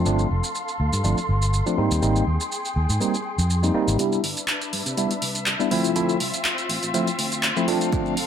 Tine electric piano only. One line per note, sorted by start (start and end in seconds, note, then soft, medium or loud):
0.05 0.26 F3 medium
0.05 0.27 A3 medium
0.05 0.27 C4 medium
0.05 0.27 D4 medium
1.03 1.18 F3 medium
1.03 1.18 A3 medium
1.03 1.18 C4 medium
1.03 1.18 D4 medium
1.66 1.75 F3 medium
1.66 1.75 A3 medium
1.66 1.75 C4 medium
1.66 1.75 D4 medium
1.77 1.99 G3 medium
1.77 2.00 A#3 medium
1.77 2.00 C4 medium
1.77 2.00 D#4 medium
2.02 2.23 G3 medium
2.02 2.23 A#3 medium
2.02 2.23 C4 medium
2.02 2.23 D#4 medium
3.00 3.14 G3 medium
3.00 3.15 A#3 medium
3.00 3.15 C4 medium
3.00 3.15 D#4 medium
3.63 3.72 G3 medium
3.63 3.72 A#3 medium
3.63 3.72 C4 medium
3.63 3.72 D#4 medium
3.74 3.96 G3 medium
3.74 3.96 A#3 medium
3.74 3.96 C4 medium
3.74 3.97 D#4 medium
3.99 4.20 G3 medium
3.99 4.20 B3 medium
3.99 4.20 D4 medium
3.99 4.20 E4 medium
4.97 5.11 G3 medium
4.97 5.11 B3 medium
4.97 5.11 D4 medium
4.97 5.11 E4 medium
5.59 5.68 G3 medium
5.59 5.68 B3 medium
5.59 5.69 D4 medium
5.59 5.69 E4 medium
5.71 5.93 F3 medium
5.71 5.93 A3 medium
5.71 5.93 C4 medium
5.71 5.93 E4 medium
5.95 6.16 F3 medium
5.95 6.17 A3 medium
5.95 6.17 C4 medium
5.95 6.17 E4 medium
6.94 7.08 F3 medium
6.94 7.08 A3 medium
6.94 7.08 C4 medium
6.94 7.08 E4 medium
7.56 7.65 F3 medium
7.56 7.65 A3 medium
7.56 7.65 C4 medium
7.56 7.65 E4 medium
7.68 7.90 F3 medium
7.68 7.90 A3 medium
7.68 7.90 C4 medium
7.68 7.90 D4 medium
7.92 8.13 F3 medium
7.92 8.13 A3 medium
7.92 8.14 C4 medium
7.92 8.14 D4 medium